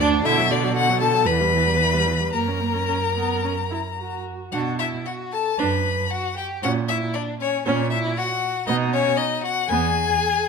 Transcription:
0.00 0.24 D2 loud
0.00 0.24 D4 loud
0.00 0.27 D4 loud
0.00 0.08 D5 loud
0.25 1.28 B2 loud
0.25 0.40 D3 loud
0.25 0.49 E4 loud
0.25 0.52 E5 loud
0.38 0.52 F#3 medium
0.50 0.65 D3 medium
0.50 0.76 D4 medium
0.50 0.75 D5 loud
0.64 0.76 F#3 medium
0.75 0.91 D3 medium
0.75 1.00 F#4 loud
0.75 1.00 F#5 loud
0.89 1.03 F#3 medium
1.01 1.15 D3 medium
1.01 1.28 A4 loud
1.01 1.28 A5 loud
1.14 1.26 F#3 medium
1.26 2.34 E2 loud
1.26 1.42 E3 medium
1.26 2.35 B4 loud
1.26 2.32 B5 loud
1.40 1.54 G3 medium
1.52 1.68 E3 medium
1.66 1.79 G3 medium
1.79 1.95 E3 medium
1.93 2.08 G3 medium
2.06 2.21 E3 medium
2.20 2.33 G3 medium
2.32 4.31 F#2 medium
2.32 2.49 A#3 medium
2.32 4.25 A#4 medium
2.32 4.21 A#5 loud
2.47 2.62 C#4 medium
2.61 2.75 A#3 medium
2.74 2.87 C#4 medium
2.88 2.96 C#4 medium
3.15 3.42 B3 medium
3.44 3.52 C#4 medium
3.71 3.79 E4 medium
3.98 4.51 F#4 medium
4.52 4.97 B2 medium
4.52 4.78 D4 medium
4.52 4.78 F#4 loud
4.52 4.60 F#5 loud
4.79 5.08 E4 medium
4.79 4.87 E5 loud
5.06 5.34 F#4 medium
5.06 5.14 F#5 medium
5.32 5.59 A4 loud
5.32 5.60 A5 loud
5.58 6.02 F#2 medium
5.58 5.83 D4 medium
5.58 6.10 B4 medium
5.58 6.12 B5 loud
6.10 6.36 F#4 loud
6.10 6.37 F#5 loud
6.37 6.62 G4 medium
6.37 6.45 G5 medium
6.63 7.06 A#2 loud
6.63 6.87 C#4 medium
6.63 6.71 F#4 medium
6.63 6.71 F#5 loud
6.88 7.17 E4 medium
6.88 6.96 E5 loud
7.14 7.40 D4 medium
7.14 7.22 D5 loud
7.40 7.65 C#4 medium
7.40 7.65 C#5 loud
7.65 8.08 A#2 loud
7.65 7.89 C#4 medium
7.65 7.91 C#4 medium
7.65 7.89 C#5 loud
7.90 8.19 E4 loud
7.90 7.98 E5 loud
8.17 8.67 F#4 loud
8.17 8.66 F#5 loud
8.67 9.09 B2 loud
8.67 8.91 B3 medium
8.67 8.95 D#4 loud
8.67 8.75 D#5 loud
8.93 9.20 C#4 loud
8.93 9.18 C#5 loud
9.17 9.45 D#4 loud
9.17 9.42 D#5 loud
9.43 9.67 F#4 loud
9.43 9.70 F#5 loud
9.68 10.12 E2 medium
9.68 9.93 B3 medium
9.68 10.48 G#4 loud
9.68 10.48 G#5 loud

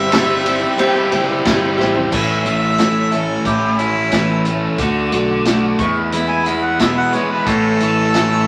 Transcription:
0.00 0.65 G1 loud
0.00 0.10 G3 medium
0.00 0.11 C4 medium
0.00 0.12 C4 soft
0.00 0.12 E4 medium
0.00 0.13 E4 medium
0.00 0.12 G4 medium
0.00 0.13 G4 medium
0.00 2.09 G4 medium
0.00 2.10 C5 medium
0.00 1.41 E5 loud
0.00 2.10 E6 medium
0.12 0.45 G3 medium
0.12 0.46 C4 medium
0.12 0.46 E4 medium
0.12 0.44 G4 medium
0.12 snare loud
0.12 ride loud
0.46 0.78 C4 medium
0.46 0.78 E4 medium
0.46 0.79 G4 medium
0.46 ride medium
0.61 0.97 C4 medium
0.61 0.96 E4 medium
0.61 0.95 G4 medium
0.78 1.12 G3 medium
0.78 1.13 C4 loud
0.78 1.12 E4 loud
0.78 1.10 G4 loud
0.78 ride loud
0.96 1.12 C4 medium
0.96 1.13 E4 medium
0.96 1.14 G4 medium
1.11 1.43 F#1 medium
1.11 1.45 G3 medium
1.11 1.45 C4 medium
1.11 1.46 E4 medium
1.11 1.45 G4 medium
1.11 ride medium
1.29 1.46 C4 medium
1.29 1.47 E4 medium
1.29 1.47 G4 medium
1.45 1.76 G1 medium
1.45 1.79 G3 medium
1.45 1.79 C4 medium
1.45 1.78 E4 medium
1.45 1.77 G4 medium
1.45 kick medium
1.45 snare loud
1.45 ride loud
1.78 2.09 A1 medium
1.78 2.11 G3 medium
1.78 2.13 C4 medium
1.78 2.13 E4 medium
1.78 2.12 G4 medium
1.78 snare medium
1.82 1.94 G4 medium
1.95 2.11 C4 medium
1.95 2.11 E4 medium
1.95 2.10 G4 medium
1.95 floor tom medium
2.11 2.43 A1 medium
2.11 2.46 A2 medium
2.11 2.46 E3 medium
2.11 2.46 A3 medium
2.11 2.44 C#4 medium
2.11 2.43 E4 medium
2.11 4.77 C#5 medium
2.11 3.15 E5 loud
2.11 4.77 A5 medium
2.11 4.77 E6 medium
2.11 kick loud
2.11 crash loud
2.44 3.35 A1 medium
2.44 4.11 E3 medium
2.44 2.79 A3 soft
2.44 2.79 C#4 soft
2.44 2.78 E4 soft
2.44 closed hi-hat medium
2.78 3.13 A2 medium
2.78 3.13 E3 medium
2.78 3.13 A3 medium
2.78 3.12 C#4 medium
2.78 3.10 E4 medium
2.78 snare loud
2.78 closed hi-hat medium
3.11 3.46 A3 soft
3.11 3.47 C#4 soft
3.11 3.46 E4 soft
3.11 3.45 A4 medium
3.11 closed hi-hat medium
3.45 4.66 A1 medium
3.45 3.79 E3 medium
3.45 3.80 A3 medium
3.45 3.79 C#4 medium
3.45 3.80 G4 medium
3.45 kick medium
3.45 closed hi-hat medium
3.49 3.78 E4 medium
3.79 4.12 A3 soft
3.79 4.13 C#4 soft
3.79 4.44 E4 medium
3.79 4.13 E4 medium
3.79 closed hi-hat medium
4.11 4.46 A2 medium
4.11 4.47 E3 medium
4.11 4.47 A3 medium
4.11 4.46 C#4 medium
4.11 4.44 E4 medium
4.11 kick medium
4.11 snare loud
4.11 closed hi-hat medium
4.45 4.79 A3 soft
4.45 4.80 C#4 soft
4.45 4.80 E4 medium
4.45 closed hi-hat medium
4.77 5.09 D2 medium
4.77 5.13 D3 medium
4.77 5.14 A3 medium
4.77 5.79 A4 medium
4.77 5.78 F#5 medium
4.77 5.78 D6 medium
4.77 kick loud
4.77 closed hi-hat medium
4.82 5.13 D4 medium
4.82 5.12 F#4 medium
5.12 5.73 B1 medium
5.12 5.80 D3 medium
5.12 5.46 D4 medium
5.12 5.47 F#4 medium
5.12 closed hi-hat medium
5.16 5.45 A3 soft
5.45 5.80 D3 medium
5.45 5.80 A3 medium
5.45 5.80 D4 medium
5.45 5.80 F#4 medium
5.45 snare loud
5.45 closed hi-hat loud
5.79 7.00 E2 medium
5.79 7.47 E2 medium
5.79 6.13 G#3 soft
5.79 6.14 B3 soft
5.79 6.14 E4 soft
5.79 7.46 G#4 medium
5.79 8.47 E5 medium
5.79 7.46 B5 medium
5.79 5.95 C#6 medium
5.79 kick loud
5.79 closed hi-hat medium
5.83 6.12 E3 soft
6.12 6.47 E3 medium
6.12 6.47 G#3 medium
6.12 6.47 B3 medium
6.12 6.46 E4 medium
6.12 6.30 B5 medium
6.12 closed hi-hat medium
6.29 6.48 G#5 medium
6.46 6.80 G#3 soft
6.46 6.81 B3 soft
6.46 6.81 E4 medium
6.46 6.65 B5 medium
6.46 closed hi-hat medium
6.50 6.80 E3 soft
6.63 6.79 F#5 medium
6.79 7.14 E2 medium
6.79 7.14 B2 medium
6.79 7.14 E3 medium
6.79 7.15 G#3 medium
6.79 7.14 B3 medium
6.79 7.13 E4 medium
6.79 6.96 E5 medium
6.79 kick medium
6.79 snare loud
6.79 closed hi-hat medium
6.97 7.16 F#5 medium
7.13 7.48 G#3 soft
7.13 7.48 B3 soft
7.13 7.47 E4 soft
7.13 7.32 C#5 medium
7.13 closed hi-hat medium
7.17 7.46 E3 soft
7.30 7.49 B4 medium
7.46 7.77 A1 loud
7.46 7.81 A2 medium
7.46 7.81 E3 medium
7.46 7.81 A3 medium
7.46 7.81 C#4 medium
7.46 7.79 E4 medium
7.46 8.47 A4 loud
7.46 8.47 A4 medium
7.46 8.47 C#6 medium
7.46 kick loud
7.46 closed hi-hat medium
7.80 8.47 A1 loud
7.80 8.47 E3 medium
7.80 8.13 A3 soft
7.80 8.14 C#4 soft
7.80 8.14 E4 medium
7.80 closed hi-hat medium
8.13 8.47 A2 medium
8.13 8.47 E3 medium
8.13 8.47 A3 medium
8.13 8.47 C#4 medium
8.13 8.46 E4 medium
8.13 snare loud
8.13 closed hi-hat medium

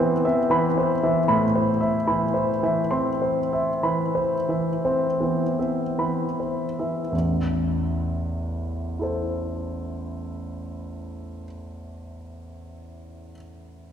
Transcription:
0.00 1.24 A2 soft
0.00 0.50 E3 soft
0.00 0.23 B3 soft
0.00 0.25 C4 soft
0.00 0.78 C5 soft
0.00 0.25 E5 soft
0.00 0.51 B5 soft
0.00 2.91 C6 medium
0.25 0.66 C4 soft
0.25 0.66 E5 soft
0.50 0.91 E3 soft
0.50 0.92 B5 soft
0.78 1.18 C5 soft
1.03 1.44 E3 soft
1.03 1.44 E5 soft
1.28 7.09 A2 soft
1.28 1.69 B5 soft
1.55 1.96 C5 soft
1.81 2.22 E5 soft
2.07 2.50 E3 soft
2.07 2.50 B5 soft
2.34 2.78 C5 soft
2.63 3.09 E3 soft
2.63 3.09 E5 soft
2.91 3.38 C4 soft
2.91 3.38 C6 soft
3.22 3.69 C5 soft
3.53 4.01 E5 soft
3.83 4.34 E3 soft
3.83 4.34 B5 soft
4.15 4.68 C5 soft
4.49 5.05 E3 soft
4.49 5.05 E5 soft
4.85 5.43 C4 soft
4.85 5.43 C5 soft
5.20 5.82 E3 soft
5.20 5.58 B3 soft
5.59 6.23 C4 soft
5.59 6.23 E5 soft
5.98 6.64 E3 soft
5.98 6.65 B5 soft
6.40 7.00 C5 soft
6.79 7.13 E3 soft
6.79 7.13 E5 soft
7.12 11.44 A1 soft
7.12 11.44 E2 soft
8.99 13.31 E4 soft
8.99 13.34 A4 soft
9.03 13.36 C5 soft

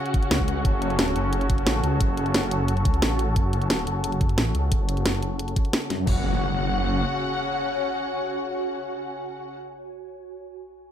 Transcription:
0.00 6.03 C#3 medium
0.00 6.03 C#4 medium
0.00 6.03 F#4 medium
0.00 6.06 F#4 medium
0.00 6.07 C#5 medium
0.00 0.63 F#5 medium
0.00 1.26 G#5 medium
0.06 closed hi-hat soft
0.14 kick loud
0.14 closed hi-hat medium
0.23 closed hi-hat soft
0.31 0.64 C#2 medium
0.31 snare loud
0.31 closed hi-hat medium
0.40 kick medium
0.48 closed hi-hat medium
0.65 1.14 F#1 medium
0.65 6.05 A4 medium
0.65 kick loud
0.65 closed hi-hat medium
0.82 closed hi-hat medium
0.90 closed hi-hat soft
0.99 snare loud
0.99 closed hi-hat medium
1.16 1.65 F#1 loud
1.16 closed hi-hat medium
1.24 6.09 A5 medium
1.33 closed hi-hat medium
1.41 closed hi-hat soft
1.50 kick loud
1.50 closed hi-hat medium
1.58 closed hi-hat soft
1.67 1.82 A1 medium
1.67 snare loud
1.67 closed hi-hat medium
1.84 1.99 C#2 medium
1.84 closed hi-hat medium
2.01 2.84 F#1 medium
2.01 kick loud
2.01 closed hi-hat medium
2.17 closed hi-hat medium
2.26 closed hi-hat soft
2.34 snare loud
2.34 closed hi-hat medium
2.51 closed hi-hat medium
2.68 closed hi-hat medium
2.77 closed hi-hat soft
2.85 3.01 C#2 loud
2.85 kick loud
2.85 closed hi-hat medium
2.94 closed hi-hat soft
3.02 3.35 A1 loud
3.02 snare loud
3.02 closed hi-hat medium
3.19 closed hi-hat medium
3.36 3.86 F#1 medium
3.36 kick loud
3.36 closed hi-hat medium
3.53 closed hi-hat medium
3.62 closed hi-hat soft
3.70 snare loud
3.70 closed hi-hat medium
3.87 4.36 F#1 loud
3.87 closed hi-hat medium
4.04 closed hi-hat medium
4.12 closed hi-hat soft
4.21 kick medium
4.21 closed hi-hat medium
4.29 closed hi-hat soft
4.38 4.53 A1 loud
4.38 snare loud
4.38 closed hi-hat medium
4.55 4.70 C#2 loud
4.55 closed hi-hat medium
4.72 5.55 F#1 medium
4.72 kick loud
4.72 closed hi-hat medium
4.89 closed hi-hat medium
4.97 closed hi-hat soft
5.06 snare loud
5.06 closed hi-hat loud
5.23 closed hi-hat medium
5.39 closed hi-hat medium
5.48 closed hi-hat soft
5.56 kick loud
5.56 closed hi-hat medium
5.65 closed hi-hat soft
5.73 snare loud
5.73 closed hi-hat medium
5.82 closed hi-hat soft
5.90 6.06 F#2 medium
5.90 snare soft
5.90 closed hi-hat medium
6.07 7.05 F#1 medium
6.07 9.54 C#3 medium
6.07 9.54 C#4 medium
6.07 9.54 F#4 medium
6.07 9.54 F#5 medium
6.07 kick loud
6.07 crash medium
6.07 impact medium
6.12 9.55 C#5 medium
6.18 9.55 G#5 medium

